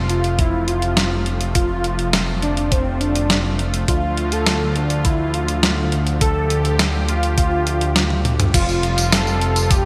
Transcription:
0.00 3.85 F1 medium
0.00 3.84 C3 medium
0.00 3.84 F3 medium
0.00 8.50 A3 medium
0.00 3.84 F4 medium
0.09 0.40 F4 loud
0.09 closed hi-hat medium
0.24 closed hi-hat medium
0.39 0.69 E4 loud
0.39 kick loud
0.39 closed hi-hat medium
0.68 1.26 F4 loud
0.68 closed hi-hat medium
0.82 closed hi-hat medium
0.97 snare loud
0.97 closed hi-hat medium
1.26 closed hi-hat medium
1.41 closed hi-hat medium
1.55 2.09 F4 loud
1.55 kick loud
1.55 closed hi-hat medium
1.84 closed hi-hat medium
1.99 closed hi-hat medium
2.13 snare loud
2.13 closed hi-hat medium
2.42 2.73 D4 loud
2.42 closed hi-hat medium
2.57 closed hi-hat medium
2.72 3.02 C4 loud
2.72 kick loud
2.72 closed hi-hat medium
3.01 3.59 D4 loud
3.01 closed hi-hat medium
3.16 closed hi-hat medium
3.30 snare loud
3.30 closed hi-hat medium
3.59 closed hi-hat medium
3.74 closed hi-hat medium
3.88 8.51 D2 medium
3.88 8.50 D3 medium
3.88 8.50 F3 medium
3.88 4.34 F4 loud
3.88 6.19 F4 medium
3.88 kick loud
3.88 closed hi-hat medium
4.17 closed hi-hat medium
4.32 4.77 A4 loud
4.32 closed hi-hat medium
4.46 snare loud
4.46 closed hi-hat medium
4.76 5.04 D4 loud
4.76 closed hi-hat medium
4.90 closed hi-hat medium
5.05 5.36 E4 medium
5.05 kick loud
5.05 closed hi-hat medium
5.34 5.92 F4 medium
5.34 closed hi-hat medium
5.48 closed hi-hat medium
5.63 snare loud
5.63 closed hi-hat medium
5.92 closed hi-hat medium
6.07 closed hi-hat medium
6.21 8.52 G4 medium
6.21 6.75 A4 loud
6.21 kick loud
6.21 closed hi-hat medium
6.50 closed hi-hat medium
6.65 closed hi-hat medium
6.79 snare loud
6.79 closed hi-hat medium
7.09 7.36 F4 loud
7.09 closed hi-hat medium
7.23 closed hi-hat medium
7.38 8.21 F4 loud
7.38 kick loud
7.38 closed hi-hat medium
7.67 closed hi-hat medium
7.81 closed hi-hat medium
7.96 snare loud
7.96 closed hi-hat medium
8.10 high tom medium
8.25 closed hi-hat medium
8.25 mid tom medium
8.40 closed hi-hat medium
8.40 mid tom medium
8.54 9.85 F1 medium
8.54 9.85 C3 medium
8.54 9.85 F3 medium
8.54 9.85 G3 medium
8.54 9.85 F4 medium
8.54 9.14 F4 medium
8.54 kick loud
8.54 closed hi-hat loud
8.54 crash loud
8.54 tambourine soft
8.69 tambourine soft
8.83 closed hi-hat medium
8.98 closed hi-hat medium
8.98 tambourine medium
9.12 9.72 A4 loud
9.12 snare loud
9.12 closed hi-hat loud
9.12 tambourine soft
9.27 tambourine soft
9.41 closed hi-hat medium
9.56 closed hi-hat medium
9.56 tambourine medium
9.71 9.85 G4 loud
9.71 kick loud
9.71 closed hi-hat loud
9.71 tambourine soft

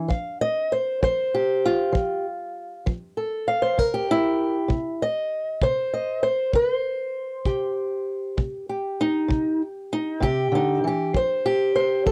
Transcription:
0.08 0.65 F3 medium
0.08 0.41 F5 soft
0.08 kick medium
0.41 0.72 D#5 medium
0.72 1.03 C5 medium
1.03 1.58 F3 medium
1.03 1.95 C5 medium
1.03 kick medium
1.35 2.26 G4 medium
1.66 2.87 F4 medium
1.92 2.48 F3 medium
1.92 kick medium
2.86 3.41 F3 medium
2.86 kick medium
3.17 3.62 A4 soft
3.48 3.78 F5 medium
3.62 3.79 C5 medium
3.78 4.33 C3 medium
3.78 4.55 A#4 medium
3.78 kick medium
3.94 4.70 G4 medium
4.11 5.02 E4 loud
4.68 5.24 C3 medium
4.68 kick medium
5.02 5.63 D#5 medium
5.62 6.17 C3 medium
5.62 6.22 C5 medium
5.62 kick medium
5.94 6.24 D#5 medium
6.23 6.54 C5 medium
6.53 7.09 C3 medium
6.53 6.73 B4 medium
6.53 kick medium
6.73 8.39 C5 medium
7.45 8.01 C3 medium
7.45 8.68 G4 soft
7.45 kick medium
8.37 8.93 C3 medium
8.37 kick medium
8.69 10.22 G4 soft
9.01 9.61 D#4 medium
9.28 9.84 C3 medium
9.28 kick medium
9.93 10.23 D#4 medium
10.20 10.51 C3 medium
10.20 10.84 G4 medium
10.20 kick medium
10.52 10.83 D3 medium
10.52 10.85 D#4 medium
10.84 11.14 E3 medium
10.84 11.16 G4 medium
11.14 11.69 F3 medium
11.14 11.74 C5 medium
11.14 kick medium
11.46 12.12 G4 medium
11.76 12.06 C5 medium
12.06 12.12 F3 medium
12.06 12.12 A4 medium
12.06 kick medium

